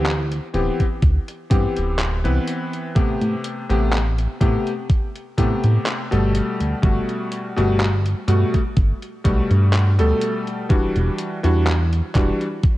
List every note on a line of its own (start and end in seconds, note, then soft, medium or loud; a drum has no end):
0.00 0.40 D2 medium
0.00 0.10 G4 medium
0.06 clap loud
0.06 closed hi-hat medium
0.32 closed hi-hat soft
0.53 0.70 D1 medium
0.53 0.83 E3 medium
0.53 0.83 B3 medium
0.53 0.84 C4 medium
0.53 0.84 G4 medium
0.53 closed hi-hat medium
0.80 kick medium
0.80 closed hi-hat soft
1.02 1.19 D2 medium
1.02 kick loud
1.02 closed hi-hat medium
1.28 closed hi-hat soft
1.50 1.67 G2 medium
1.50 2.18 E3 medium
1.50 2.19 B3 medium
1.50 2.19 C4 medium
1.50 2.19 G4 medium
1.50 kick loud
1.50 closed hi-hat medium
1.77 2.27 D1 medium
1.77 closed hi-hat soft
1.99 clap loud
1.99 closed hi-hat medium
2.24 2.39 C2 medium
2.24 2.90 E3 medium
2.24 2.90 B3 medium
2.24 2.91 C4 medium
2.24 2.91 B4 medium
2.24 closed hi-hat soft
2.48 closed hi-hat medium
2.73 closed hi-hat soft
2.95 3.17 A2 soft
2.95 3.64 C3 medium
2.95 3.64 A3 medium
2.95 3.64 B3 medium
2.95 3.64 G4 medium
2.95 kick loud
2.95 closed hi-hat medium
3.22 3.36 A2 loud
3.22 closed hi-hat soft
3.44 closed hi-hat medium
3.69 4.28 A1 medium
3.69 3.96 C3 medium
3.69 3.97 A3 medium
3.69 3.97 B3 medium
3.69 3.97 G4 loud
3.69 closed hi-hat soft
3.93 clap loud
3.93 closed hi-hat medium
4.19 closed hi-hat soft
4.41 4.57 A2 medium
4.41 4.70 C3 medium
4.41 4.70 A3 medium
4.41 4.71 B3 medium
4.41 4.71 G4 medium
4.41 kick loud
4.41 closed hi-hat medium
4.67 closed hi-hat soft
4.90 kick loud
4.90 closed hi-hat medium
5.16 closed hi-hat soft
5.37 5.54 A2 medium
5.37 6.06 C3 medium
5.37 6.06 A3 medium
5.37 6.06 B3 medium
5.37 6.06 G4 medium
5.37 kick medium
5.37 closed hi-hat medium
5.64 5.78 A2 medium
5.64 closed hi-hat soft
5.86 clap loud
5.86 closed hi-hat medium
6.11 6.41 G1 medium
6.11 6.77 B2 medium
6.11 6.77 G3 medium
6.11 6.78 A3 medium
6.11 6.78 A4 loud
6.11 closed hi-hat soft
6.35 closed hi-hat medium
6.60 6.75 D2 medium
6.60 closed hi-hat soft
6.82 6.99 G1 medium
6.82 7.51 B2 medium
6.82 7.51 G3 medium
6.82 7.51 A3 medium
6.82 7.51 F#4 medium
6.82 kick loud
6.82 closed hi-hat medium
7.09 closed hi-hat soft
7.32 closed hi-hat medium
7.56 8.15 G1 medium
7.56 7.83 B2 medium
7.56 7.84 G3 medium
7.56 7.84 A3 medium
7.56 7.84 F#4 loud
7.56 closed hi-hat soft
7.80 clap loud
7.80 closed hi-hat medium
8.06 closed hi-hat soft
8.28 8.44 G2 medium
8.28 8.57 B2 medium
8.28 8.57 G3 medium
8.28 8.58 A3 medium
8.28 8.58 F#4 medium
8.28 closed hi-hat medium
8.54 kick medium
8.54 closed hi-hat soft
8.77 8.93 G1 medium
8.77 kick loud
8.77 closed hi-hat medium
9.02 closed hi-hat soft
9.24 9.41 B1 medium
9.24 9.93 B2 medium
9.24 9.93 G3 medium
9.24 9.93 A3 medium
9.24 9.93 F#4 medium
9.24 kick loud
9.24 closed hi-hat medium
9.51 10.00 G2 medium
9.51 closed hi-hat soft
9.73 clap loud
9.73 closed hi-hat medium
9.98 10.13 D2 medium
9.98 10.64 B2 medium
9.98 10.65 G3 medium
9.98 10.65 A3 medium
9.98 10.65 A4 loud
9.98 closed hi-hat soft
10.21 closed hi-hat medium
10.47 closed hi-hat soft
10.69 10.91 E1 soft
10.69 11.38 E3 medium
10.69 11.38 G3 medium
10.69 11.38 D4 medium
10.69 11.38 F#4 medium
10.69 kick loud
10.69 closed hi-hat medium
10.96 11.10 E1 medium
10.96 closed hi-hat soft
11.18 closed hi-hat medium
11.43 12.02 E2 medium
11.43 11.71 E3 medium
11.43 11.71 G3 medium
11.43 11.71 D4 medium
11.43 11.71 F#4 loud
11.43 closed hi-hat soft
11.67 clap loud
11.67 closed hi-hat medium
11.93 closed hi-hat soft
12.14 12.31 E1 medium
12.14 12.44 E3 medium
12.14 12.44 G3 medium
12.14 12.45 D4 medium
12.14 12.45 F#4 medium
12.14 kick loud
12.14 clap medium
12.14 closed hi-hat medium
12.41 closed hi-hat soft
12.63 kick loud
12.63 closed hi-hat medium